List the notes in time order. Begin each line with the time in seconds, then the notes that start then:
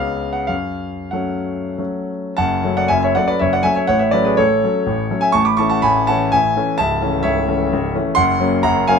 Already playing: C#2 G#3 B3 C#4 F5
0.33 F#5
0.47 F#2 F5
1.11 F#3 A3 C#4 F#5
1.78 F#3 A3 C#4
2.37 F#1 F#2 F#5 A5
2.64 F#3 A3 C#4
2.77 D5 F#5
2.88 F#1 F#2 E5 G#5
3.03 C#5 E5
3.15 F#3 A3 C#4 D5 F#5
3.28 B4 D5
3.39 F#1 F#2 C#5 E5
3.53 D5 F#5
3.63 F#3 A3 C#4 E5 G#5
3.75 C#5 E5
3.87 A1 A2 C#5 F#5
3.99 C#5 E5
4.11 F#3 A3 C#4 B4 D5
4.25 G#4 B4
4.37 A1 A2 A4 C#5
4.64 F#3 A3 C#4
4.86 A1 A2
5.11 F#3 A3 C#4
5.21 E5 G#5
5.32 A1 A2 A5 C#6
5.45 B5 D6
5.57 E3 A3 C#4 A5 C#6
5.70 F#5 A5
5.82 A1 A2 G#5 B5
6.07 E3 A3 C#4 F#5 A5
6.32 A1 A2 E5 G#5
6.56 E3 A3 C#4
6.78 C#1 C#2 E5 A5
7.02 E3 A3 C#4
7.23 C#1 C#2 C#5 E5
7.48 E3 A3 C#4
7.73 C#1 C#2
7.95 E3 A3 C#4
8.15 F#1 F#2 F#5 C6
8.40 F#3 A#3 C#4
8.63 F#1 F#2 F#5 A#5
8.87 F#3 A#3 C#4 F5 G#5